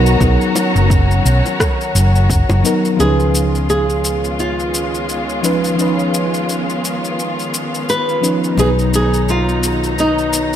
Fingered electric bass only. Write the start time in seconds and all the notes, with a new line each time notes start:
Already playing: B1
0.20 B1
0.75 F#1
1.25 B1
1.95 F#1
2.50 F#1
2.99 C#2
8.58 B1